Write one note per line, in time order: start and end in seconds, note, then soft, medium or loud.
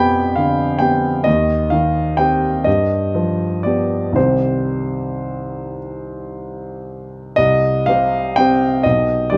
0.00 1.22 F2 medium
0.00 1.29 B2 soft
0.00 0.80 B3 soft
0.00 0.81 G4 soft
0.00 0.79 G5 medium
0.00 1.28 G#5 medium
0.00 1.28 B5 medium
0.36 1.07 D3 soft
0.36 0.80 F5 medium
0.79 1.22 B3 soft
0.79 1.22 G4 soft
0.79 1.25 G5 medium
1.24 2.62 D#2 medium
1.24 1.71 D#5 medium
1.70 2.47 D#3 soft
1.70 2.18 F5 medium
2.17 2.62 C4 soft
2.17 2.63 G4 soft
2.17 2.65 G5 medium
2.64 4.13 G2 soft
2.64 3.63 D#5 medium
3.15 3.96 F3 soft
3.63 4.13 B3 soft
3.63 4.14 G4 soft
3.63 4.16 D5 medium
4.13 7.31 C2 soft
4.13 7.32 D#3 soft
4.13 7.33 C4 soft
4.13 5.79 C5 medium
4.17 7.33 G4 soft
7.36 7.86 C2 medium
7.36 7.86 D#5 medium
7.86 8.33 C3 soft
7.86 8.33 C4 soft
7.86 8.34 G4 soft
7.86 8.36 F5 medium
8.36 8.81 C3 soft
8.36 8.81 C4 soft
8.36 8.82 G4 soft
8.36 8.84 G5 medium
8.83 9.30 B1 soft
8.83 9.30 D#5 medium
9.30 9.38 D3 soft
9.30 9.38 G3 soft
9.30 9.38 G4 soft
9.30 9.38 D5 medium